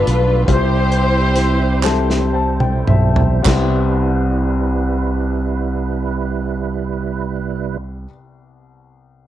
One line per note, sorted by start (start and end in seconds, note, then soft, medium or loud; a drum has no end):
0.00 0.50 G2 medium
0.00 0.44 G3 medium
0.00 0.50 A3 medium
0.00 0.44 B3 medium
0.00 0.50 B3 medium
0.00 0.44 D4 medium
0.00 0.49 D4 medium
0.00 0.44 F4 soft
0.00 0.45 F4 medium
0.00 0.49 F4 medium
0.00 0.50 G4 medium
0.00 0.13 A4 medium
0.00 0.44 A4 medium
0.00 0.49 B4 medium
0.07 0.45 B1 medium
0.07 closed hi-hat medium
0.46 2.84 C2 medium
0.46 1.80 C3 medium
0.46 3.40 G3 medium
0.46 1.44 G3 medium
0.46 3.41 C4 medium
0.46 1.44 C4 medium
0.46 3.41 E4 medium
0.46 1.44 E4 medium
0.46 0.56 F4 medium
0.46 0.55 A#4 soft
0.46 kick medium
0.46 closed hi-hat medium
0.51 2.32 E4 medium
0.51 2.32 G4 medium
0.51 1.48 G4 medium
0.51 2.36 C5 medium
0.51 3.44 C5 medium
0.92 closed hi-hat soft
1.36 snare soft
1.36 closed hi-hat medium
1.83 2.96 G3 medium
1.83 2.97 C4 medium
1.83 2.97 E4 medium
1.83 2.97 A4 medium
1.83 snare soft
1.83 clap medium
2.10 snare medium
2.34 2.59 A5 medium
2.60 2.86 G5 medium
2.60 mid tom medium
2.87 3.41 B1 medium
2.87 3.41 E5 medium
2.87 mid tom medium
3.16 floor tom medium
3.42 8.04 C2 medium
3.42 8.05 C2 medium
3.42 7.77 C3 medium
3.42 8.02 G3 medium
3.42 7.77 G3 medium
3.42 8.03 B3 medium
3.42 8.05 C4 medium
3.42 7.77 E4 medium
3.42 7.77 B4 medium
3.42 kick medium
3.42 clap medium
3.42 splash medium
3.47 8.07 E4 medium
3.47 8.08 G4 medium
3.47 snare medium